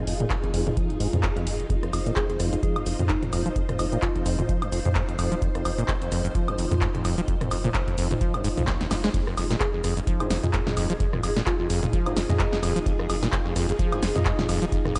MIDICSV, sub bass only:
0, 0, Header, 1, 2, 480
1, 0, Start_track
1, 0, Key_signature, -4, "minor"
1, 0, Tempo, 465116
1, 1753, Time_signature, 4, 2, 24, 8
1, 15473, End_track
2, 0, Start_track
2, 0, Title_t, "Sub bass"
2, 0, Program_c, 0, 38
2, 73, Note_on_c, 0, 29, 99
2, 264, Note_off_c, 0, 29, 0
2, 553, Note_on_c, 0, 29, 83
2, 744, Note_off_c, 0, 29, 0
2, 1033, Note_on_c, 0, 29, 102
2, 1137, Note_off_c, 0, 29, 0
2, 1168, Note_on_c, 0, 41, 99
2, 1345, Note_off_c, 0, 41, 0
2, 1513, Note_on_c, 0, 29, 93
2, 1704, Note_off_c, 0, 29, 0
2, 1993, Note_on_c, 0, 29, 100
2, 2184, Note_off_c, 0, 29, 0
2, 2473, Note_on_c, 0, 29, 82
2, 2664, Note_off_c, 0, 29, 0
2, 2953, Note_on_c, 0, 29, 97
2, 3057, Note_off_c, 0, 29, 0
2, 3087, Note_on_c, 0, 41, 94
2, 3265, Note_off_c, 0, 41, 0
2, 3433, Note_on_c, 0, 27, 100
2, 3624, Note_off_c, 0, 27, 0
2, 3913, Note_on_c, 0, 29, 103
2, 4104, Note_off_c, 0, 29, 0
2, 4393, Note_on_c, 0, 29, 81
2, 4584, Note_off_c, 0, 29, 0
2, 4872, Note_on_c, 0, 29, 99
2, 4976, Note_off_c, 0, 29, 0
2, 5008, Note_on_c, 0, 41, 97
2, 5185, Note_off_c, 0, 41, 0
2, 5353, Note_on_c, 0, 27, 96
2, 5544, Note_off_c, 0, 27, 0
2, 5832, Note_on_c, 0, 29, 102
2, 6024, Note_off_c, 0, 29, 0
2, 6312, Note_on_c, 0, 29, 83
2, 6504, Note_off_c, 0, 29, 0
2, 6793, Note_on_c, 0, 29, 99
2, 6897, Note_off_c, 0, 29, 0
2, 6928, Note_on_c, 0, 41, 96
2, 7105, Note_off_c, 0, 41, 0
2, 7273, Note_on_c, 0, 27, 96
2, 7464, Note_off_c, 0, 27, 0
2, 7754, Note_on_c, 0, 29, 100
2, 7944, Note_off_c, 0, 29, 0
2, 8233, Note_on_c, 0, 29, 83
2, 8424, Note_off_c, 0, 29, 0
2, 8713, Note_on_c, 0, 29, 100
2, 8817, Note_off_c, 0, 29, 0
2, 8848, Note_on_c, 0, 36, 100
2, 9025, Note_off_c, 0, 36, 0
2, 9193, Note_on_c, 0, 29, 94
2, 9384, Note_off_c, 0, 29, 0
2, 9673, Note_on_c, 0, 29, 101
2, 9864, Note_off_c, 0, 29, 0
2, 10153, Note_on_c, 0, 29, 82
2, 10344, Note_off_c, 0, 29, 0
2, 10634, Note_on_c, 0, 29, 104
2, 10737, Note_off_c, 0, 29, 0
2, 10768, Note_on_c, 0, 41, 99
2, 10945, Note_off_c, 0, 41, 0
2, 11114, Note_on_c, 0, 27, 99
2, 11305, Note_off_c, 0, 27, 0
2, 11593, Note_on_c, 0, 29, 100
2, 11784, Note_off_c, 0, 29, 0
2, 12073, Note_on_c, 0, 29, 82
2, 12264, Note_off_c, 0, 29, 0
2, 12553, Note_on_c, 0, 29, 103
2, 12656, Note_off_c, 0, 29, 0
2, 12688, Note_on_c, 0, 41, 99
2, 12865, Note_off_c, 0, 41, 0
2, 13033, Note_on_c, 0, 27, 96
2, 13224, Note_off_c, 0, 27, 0
2, 13513, Note_on_c, 0, 29, 102
2, 13704, Note_off_c, 0, 29, 0
2, 13993, Note_on_c, 0, 29, 82
2, 14184, Note_off_c, 0, 29, 0
2, 14472, Note_on_c, 0, 29, 99
2, 14576, Note_off_c, 0, 29, 0
2, 14607, Note_on_c, 0, 41, 97
2, 14785, Note_off_c, 0, 41, 0
2, 14953, Note_on_c, 0, 27, 101
2, 15144, Note_off_c, 0, 27, 0
2, 15432, Note_on_c, 0, 29, 103
2, 15473, Note_off_c, 0, 29, 0
2, 15473, End_track
0, 0, End_of_file